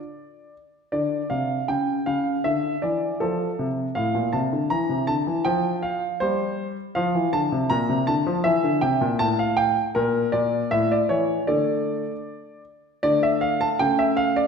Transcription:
Already playing: D5
0.92 D3 D5
1.30 C3 F5
1.68 C#3 G5
2.06 C#3 F5
2.44 D3 E5
2.82 E3 D5
3.20 F3 A4
3.59 C3
3.95 A2 F5
4.15 A#2
4.33 C3 A5
4.53 D3
4.70 E3 A#5
4.89 C3
5.07 D3 A5
5.27 E3
5.45 F3 G5
5.83 F5
6.20 G3 C5
6.95 F3 F5
7.15 E3
7.33 D3 A5
7.52 C3
7.70 A#2 A#5
7.89 C3
8.07 D3 A5
8.27 F3
8.44 E3 E5
8.64 D3
8.81 C3 G5
9.01 A#2
9.19 A2 A5
9.39 F5
9.57 G5
9.95 A#2 A#4
10.32 A#2 D5
10.71 A2 E5
10.92 D5
11.09 E3 C#5
11.47 D3 A3 A4 D5
13.03 D3 A3 D5
13.23 E5
13.41 F5
13.61 A5
13.79 C#3 A3 G5
13.99 E5
14.17 F5
14.36 D5

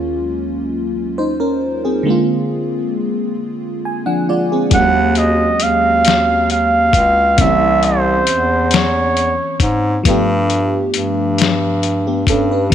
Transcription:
Already playing: D#2 F#3 G#3 A#3 C#4 F4
1.18 D#4 C5
1.40 C#4 A#4
1.85 C4 G#4
2.03 D3 G#3 A#3
2.08 C4 F4
3.85 G#5
4.06 F3 D4 F#5
4.29 G#3 F4 D5
4.52 C4 G#4
4.70 D#2 F#3 G#3 A#3 F#5, kick, closed hi-hat
4.75 C#4 F#4
5.15 D#5, closed hi-hat
5.60 D#2 F5, closed hi-hat
6.05 snare, closed hi-hat
6.50 F5, closed hi-hat
6.93 C#2, kick, closed hi-hat
7.37 C2 C#3 A#3 C4 E5, kick, closed hi-hat
7.42 E3 C#4 G4
7.83 C5, closed hi-hat
8.27 E2, closed hi-hat
8.71 C#5, snare, closed hi-hat
9.17 closed hi-hat
9.60 G#2, kick, closed hi-hat
10.03 G2 F3 A3 B3, kick, closed hi-hat
10.09 D4 G4
10.50 closed hi-hat
10.94 G2, closed hi-hat
11.38 snare, closed hi-hat
11.83 closed hi-hat
12.07 B3 G4
12.27 G2 C#4 A4, kick, closed hi-hat
12.52 D4 B4
12.70 E3

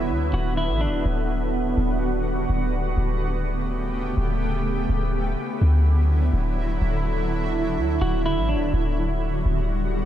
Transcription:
Already playing: D1 D3 F#3 B3 E4
0.09 D2
0.33 D1 F#4
0.57 E4
0.69 A1
0.81 D4
0.87 D1
1.05 D1 G3 F#4
1.77 D1
2.50 D1
2.97 D1 C#3 A3 G4
4.17 D1
4.89 D1 D3 F#3 E4
5.61 D2
6.33 D1
6.82 D1
7.77 D2
8.02 D1 F#4
8.26 E4
8.38 A1
8.49 D4
8.55 D1
8.73 D1 D3 G3 B3 F#4
9.46 D1

